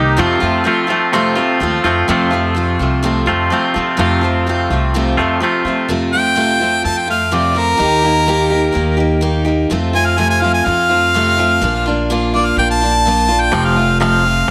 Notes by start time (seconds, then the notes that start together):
Already playing: C2 A#3 D#4 G4
0.17 F2 C3 F3 A3 C4 F4
0.40 F2 F3 A3 C4 F4
0.64 F3 A3 C4 F4
0.87 F3 A3 C4 F4
1.13 F2 C3 F3 A3 C4 F4
1.35 F3 A3 C4 F4
1.60 D#2 F3 A3 C4 F4
1.84 F2 F3 A3 C4 F4
2.08 F2 C3 F3 A3 C4 F4
2.31 F3 A3 C4 F4
2.55 F3 A3 C4 F4
2.79 C2 F3 A3 C4 F4
3.03 F2 C3 F3 A3 C4 F4
3.26 F2 C3 F3 A3 C4 F4
3.30 F2
3.50 F2 C3 F3 A3 C4 F4
3.74 F3 A3 C4 F4
3.97 F2 C3 F3 A3 C4 F4
4.21 F3 A3 C4 F4
4.46 F3 A3 C4 F4
4.70 C2 F3 A3 C4 F4
4.94 F2 C3 F3 A3 C4 F4
5.17 F2 C3 F3 A3 C4 F4
5.40 F2 C3 F3 A3 C4 F4
5.64 F3 A3 C4 F4
5.88 F2 C3 F3 A3 C4 F4
6.13 F3 A3 C4 F4 G5
6.35 F2 C3 F3 A3 C4 F4
6.60 F3 A3 C4 F4
6.83 F2 F3 A3 C4 F4 A5
6.97 G5
7.08 F3 A3 C4 F4 F5
7.31 F2 C3 F3 A3 C4 F4 D5
7.55 F3 A3 C4 F4 A#4
7.77 D#2 D#3 A#3 D#4 G4
8.02 A#3 D#4 G4
8.26 D#3 A#3 D#4 G4
8.50 A#3 D#4 G4
8.72 D#2 D#3 A#3 D#4 G4
8.97 A#3 D#4 G4
9.21 D#3 A#3 D#4 G4
9.45 A#3 D#4 G4
9.70 F2 C3 F3 A3 C4 F4
9.93 F3 A3 C4 F4 G#5
10.06 F5
10.18 F2 C3 F3 A3 C4 F4 G#5
10.30 G#5
10.42 F3 A3 C4 F4 F5
10.54 G#5
10.65 F2 F3 A3 C4 F4 F5
10.89 F3 A3 C4 F4
11.14 F2 C3 F3 A3 C4 F4
11.37 F3 A3 C4 F4
11.61 A#1 A#2 F3 A#3 D4 F4
11.86 A#3 D4 F4
12.10 A#2 F3 A#3 D4 F4
12.33 A#3 D4 F4 D5
12.46 F5
12.57 A#1 F3 A#3 D4 F4 G5
12.71 A5
12.81 A#3 D4 F4
13.06 A#2 F3 A#3 D4 F4
13.28 A#3 D4 F4
13.40 G5
13.52 F1 F2 C3 F3 A3 C4 F4
13.65 F5
13.76 F2 C3 F3 A3 C4 F4
14.00 F2 C3 F3 A3 C4 F4 F5
14.24 F2 F3 A3 C4 F4